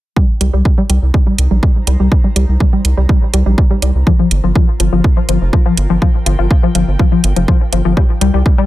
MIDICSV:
0, 0, Header, 1, 5, 480
1, 0, Start_track
1, 0, Tempo, 487805
1, 162, Time_signature, 4, 2, 24, 8
1, 8524, End_track
2, 0, Start_track
2, 0, Title_t, "Analog synth pad"
2, 0, Program_c, 0, 89
2, 162, Note_on_c, 0, 63, 83
2, 743, Note_on_c, 0, 82, 73
2, 831, Note_on_c, 0, 72, 77
2, 4002, Note_off_c, 0, 63, 0
2, 4003, Note_on_c, 0, 65, 85
2, 4523, Note_on_c, 0, 70, 75
2, 5296, Note_on_c, 0, 79, 86
2, 5541, Note_off_c, 0, 72, 0
2, 5541, Note_off_c, 0, 82, 0
2, 7842, Note_on_c, 0, 63, 82
2, 7980, Note_on_c, 0, 72, 69
2, 8524, Note_off_c, 0, 63, 0
2, 8524, Note_off_c, 0, 65, 0
2, 8524, Note_off_c, 0, 70, 0
2, 8524, Note_off_c, 0, 72, 0
2, 8524, Note_off_c, 0, 79, 0
2, 8524, End_track
3, 0, Start_track
3, 0, Title_t, "Synth arpeggio sound"
3, 0, Program_c, 1, 84
3, 162, Note_on_c, 1, 55, 82
3, 244, Note_off_c, 1, 55, 0
3, 402, Note_on_c, 1, 55, 74
3, 451, Note_off_c, 1, 55, 0
3, 526, Note_on_c, 1, 55, 78
3, 602, Note_off_c, 1, 55, 0
3, 766, Note_on_c, 1, 55, 75
3, 812, Note_off_c, 1, 55, 0
3, 882, Note_on_c, 1, 55, 72
3, 964, Note_off_c, 1, 55, 0
3, 1122, Note_on_c, 1, 55, 77
3, 1171, Note_off_c, 1, 55, 0
3, 1246, Note_on_c, 1, 55, 76
3, 1322, Note_off_c, 1, 55, 0
3, 1486, Note_on_c, 1, 55, 76
3, 1532, Note_off_c, 1, 55, 0
3, 1603, Note_on_c, 1, 55, 78
3, 1684, Note_off_c, 1, 55, 0
3, 1842, Note_on_c, 1, 55, 76
3, 1891, Note_off_c, 1, 55, 0
3, 1967, Note_on_c, 1, 55, 75
3, 2043, Note_off_c, 1, 55, 0
3, 2207, Note_on_c, 1, 55, 70
3, 2252, Note_off_c, 1, 55, 0
3, 2322, Note_on_c, 1, 55, 77
3, 2404, Note_off_c, 1, 55, 0
3, 2562, Note_on_c, 1, 55, 81
3, 2611, Note_off_c, 1, 55, 0
3, 2686, Note_on_c, 1, 55, 75
3, 2762, Note_off_c, 1, 55, 0
3, 2927, Note_on_c, 1, 55, 76
3, 2972, Note_off_c, 1, 55, 0
3, 3043, Note_on_c, 1, 55, 80
3, 3124, Note_off_c, 1, 55, 0
3, 3282, Note_on_c, 1, 55, 74
3, 3331, Note_off_c, 1, 55, 0
3, 3407, Note_on_c, 1, 55, 76
3, 3483, Note_off_c, 1, 55, 0
3, 3647, Note_on_c, 1, 55, 73
3, 3692, Note_off_c, 1, 55, 0
3, 3762, Note_on_c, 1, 55, 77
3, 3844, Note_off_c, 1, 55, 0
3, 4002, Note_on_c, 1, 53, 82
3, 4051, Note_off_c, 1, 53, 0
3, 4126, Note_on_c, 1, 53, 70
3, 4203, Note_off_c, 1, 53, 0
3, 4366, Note_on_c, 1, 53, 78
3, 4412, Note_off_c, 1, 53, 0
3, 4482, Note_on_c, 1, 53, 81
3, 4564, Note_off_c, 1, 53, 0
3, 4722, Note_on_c, 1, 53, 73
3, 4771, Note_off_c, 1, 53, 0
3, 4847, Note_on_c, 1, 53, 76
3, 4923, Note_off_c, 1, 53, 0
3, 5086, Note_on_c, 1, 53, 77
3, 5132, Note_off_c, 1, 53, 0
3, 5202, Note_on_c, 1, 53, 73
3, 5284, Note_off_c, 1, 53, 0
3, 5442, Note_on_c, 1, 53, 82
3, 5491, Note_off_c, 1, 53, 0
3, 5566, Note_on_c, 1, 53, 76
3, 5643, Note_off_c, 1, 53, 0
3, 5806, Note_on_c, 1, 53, 74
3, 5852, Note_off_c, 1, 53, 0
3, 5922, Note_on_c, 1, 53, 81
3, 6004, Note_off_c, 1, 53, 0
3, 6162, Note_on_c, 1, 53, 77
3, 6211, Note_off_c, 1, 53, 0
3, 6286, Note_on_c, 1, 53, 77
3, 6362, Note_off_c, 1, 53, 0
3, 6526, Note_on_c, 1, 53, 75
3, 6572, Note_off_c, 1, 53, 0
3, 6642, Note_on_c, 1, 53, 73
3, 6724, Note_off_c, 1, 53, 0
3, 6882, Note_on_c, 1, 53, 79
3, 6931, Note_off_c, 1, 53, 0
3, 7006, Note_on_c, 1, 53, 75
3, 7082, Note_off_c, 1, 53, 0
3, 7246, Note_on_c, 1, 53, 76
3, 7292, Note_off_c, 1, 53, 0
3, 7361, Note_on_c, 1, 53, 81
3, 7443, Note_off_c, 1, 53, 0
3, 7602, Note_on_c, 1, 53, 75
3, 7651, Note_off_c, 1, 53, 0
3, 7726, Note_on_c, 1, 53, 74
3, 7802, Note_off_c, 1, 53, 0
3, 7842, Note_on_c, 1, 55, 83
3, 7891, Note_off_c, 1, 55, 0
3, 8081, Note_on_c, 1, 55, 75
3, 8163, Note_off_c, 1, 55, 0
3, 8205, Note_on_c, 1, 55, 74
3, 8252, Note_off_c, 1, 55, 0
3, 8446, Note_on_c, 1, 55, 74
3, 8522, Note_off_c, 1, 55, 0
3, 8524, End_track
4, 0, Start_track
4, 0, Title_t, "Analog synth bass"
4, 0, Program_c, 2, 38
4, 403, Note_on_c, 2, 36, 90
4, 494, Note_off_c, 2, 36, 0
4, 527, Note_on_c, 2, 36, 76
4, 612, Note_off_c, 2, 36, 0
4, 882, Note_on_c, 2, 36, 94
4, 974, Note_off_c, 2, 36, 0
4, 1008, Note_on_c, 2, 36, 78
4, 1092, Note_off_c, 2, 36, 0
4, 1362, Note_on_c, 2, 36, 90
4, 1454, Note_off_c, 2, 36, 0
4, 1487, Note_on_c, 2, 34, 78
4, 1572, Note_off_c, 2, 34, 0
4, 1842, Note_on_c, 2, 36, 94
4, 1934, Note_off_c, 2, 36, 0
4, 1966, Note_on_c, 2, 36, 76
4, 2052, Note_off_c, 2, 36, 0
4, 2322, Note_on_c, 2, 36, 95
4, 2414, Note_off_c, 2, 36, 0
4, 2447, Note_on_c, 2, 36, 78
4, 2532, Note_off_c, 2, 36, 0
4, 2802, Note_on_c, 2, 36, 93
4, 2894, Note_off_c, 2, 36, 0
4, 2927, Note_on_c, 2, 36, 78
4, 3012, Note_off_c, 2, 36, 0
4, 3282, Note_on_c, 2, 36, 88
4, 3374, Note_off_c, 2, 36, 0
4, 3406, Note_on_c, 2, 34, 79
4, 3492, Note_off_c, 2, 34, 0
4, 3762, Note_on_c, 2, 36, 92
4, 3854, Note_off_c, 2, 36, 0
4, 3887, Note_on_c, 2, 36, 73
4, 3972, Note_off_c, 2, 36, 0
4, 4242, Note_on_c, 2, 31, 92
4, 4333, Note_off_c, 2, 31, 0
4, 4366, Note_on_c, 2, 31, 79
4, 4452, Note_off_c, 2, 31, 0
4, 4722, Note_on_c, 2, 31, 93
4, 4814, Note_off_c, 2, 31, 0
4, 4846, Note_on_c, 2, 31, 77
4, 4932, Note_off_c, 2, 31, 0
4, 5202, Note_on_c, 2, 31, 90
4, 5293, Note_off_c, 2, 31, 0
4, 5326, Note_on_c, 2, 29, 79
4, 5412, Note_off_c, 2, 29, 0
4, 5681, Note_on_c, 2, 31, 95
4, 5773, Note_off_c, 2, 31, 0
4, 5806, Note_on_c, 2, 31, 78
4, 5892, Note_off_c, 2, 31, 0
4, 6162, Note_on_c, 2, 31, 97
4, 6254, Note_off_c, 2, 31, 0
4, 6286, Note_on_c, 2, 31, 78
4, 6372, Note_off_c, 2, 31, 0
4, 6642, Note_on_c, 2, 31, 94
4, 6734, Note_off_c, 2, 31, 0
4, 6766, Note_on_c, 2, 31, 77
4, 6852, Note_off_c, 2, 31, 0
4, 7122, Note_on_c, 2, 31, 92
4, 7213, Note_off_c, 2, 31, 0
4, 7246, Note_on_c, 2, 29, 80
4, 7332, Note_off_c, 2, 29, 0
4, 7602, Note_on_c, 2, 31, 92
4, 7694, Note_off_c, 2, 31, 0
4, 7727, Note_on_c, 2, 31, 76
4, 7812, Note_off_c, 2, 31, 0
4, 8082, Note_on_c, 2, 36, 93
4, 8173, Note_off_c, 2, 36, 0
4, 8207, Note_on_c, 2, 36, 76
4, 8292, Note_off_c, 2, 36, 0
4, 8524, End_track
5, 0, Start_track
5, 0, Title_t, "Drums"
5, 162, Note_on_c, 9, 36, 111
5, 260, Note_off_c, 9, 36, 0
5, 402, Note_on_c, 9, 42, 97
5, 500, Note_off_c, 9, 42, 0
5, 642, Note_on_c, 9, 36, 113
5, 741, Note_off_c, 9, 36, 0
5, 882, Note_on_c, 9, 42, 99
5, 980, Note_off_c, 9, 42, 0
5, 1122, Note_on_c, 9, 36, 115
5, 1221, Note_off_c, 9, 36, 0
5, 1362, Note_on_c, 9, 42, 101
5, 1460, Note_off_c, 9, 42, 0
5, 1602, Note_on_c, 9, 36, 112
5, 1701, Note_off_c, 9, 36, 0
5, 1842, Note_on_c, 9, 42, 101
5, 1940, Note_off_c, 9, 42, 0
5, 2082, Note_on_c, 9, 36, 114
5, 2181, Note_off_c, 9, 36, 0
5, 2323, Note_on_c, 9, 42, 103
5, 2421, Note_off_c, 9, 42, 0
5, 2562, Note_on_c, 9, 36, 118
5, 2661, Note_off_c, 9, 36, 0
5, 2802, Note_on_c, 9, 42, 104
5, 2901, Note_off_c, 9, 42, 0
5, 3042, Note_on_c, 9, 36, 114
5, 3141, Note_off_c, 9, 36, 0
5, 3282, Note_on_c, 9, 42, 103
5, 3380, Note_off_c, 9, 42, 0
5, 3522, Note_on_c, 9, 36, 117
5, 3621, Note_off_c, 9, 36, 0
5, 3762, Note_on_c, 9, 42, 104
5, 3860, Note_off_c, 9, 42, 0
5, 4002, Note_on_c, 9, 36, 120
5, 4101, Note_off_c, 9, 36, 0
5, 4242, Note_on_c, 9, 42, 101
5, 4341, Note_off_c, 9, 42, 0
5, 4482, Note_on_c, 9, 36, 120
5, 4581, Note_off_c, 9, 36, 0
5, 4723, Note_on_c, 9, 42, 107
5, 4821, Note_off_c, 9, 42, 0
5, 4962, Note_on_c, 9, 36, 117
5, 5061, Note_off_c, 9, 36, 0
5, 5202, Note_on_c, 9, 42, 102
5, 5301, Note_off_c, 9, 42, 0
5, 5442, Note_on_c, 9, 36, 121
5, 5541, Note_off_c, 9, 36, 0
5, 5682, Note_on_c, 9, 42, 106
5, 5781, Note_off_c, 9, 42, 0
5, 5922, Note_on_c, 9, 36, 111
5, 6021, Note_off_c, 9, 36, 0
5, 6162, Note_on_c, 9, 42, 106
5, 6261, Note_off_c, 9, 42, 0
5, 6402, Note_on_c, 9, 36, 123
5, 6500, Note_off_c, 9, 36, 0
5, 6642, Note_on_c, 9, 42, 104
5, 6741, Note_off_c, 9, 42, 0
5, 6882, Note_on_c, 9, 36, 116
5, 6981, Note_off_c, 9, 36, 0
5, 7122, Note_on_c, 9, 42, 104
5, 7221, Note_off_c, 9, 42, 0
5, 7246, Note_on_c, 9, 42, 61
5, 7345, Note_off_c, 9, 42, 0
5, 7362, Note_on_c, 9, 36, 118
5, 7461, Note_off_c, 9, 36, 0
5, 7602, Note_on_c, 9, 42, 104
5, 7700, Note_off_c, 9, 42, 0
5, 7842, Note_on_c, 9, 36, 113
5, 7941, Note_off_c, 9, 36, 0
5, 8082, Note_on_c, 9, 42, 101
5, 8180, Note_off_c, 9, 42, 0
5, 8322, Note_on_c, 9, 36, 117
5, 8421, Note_off_c, 9, 36, 0
5, 8524, End_track
0, 0, End_of_file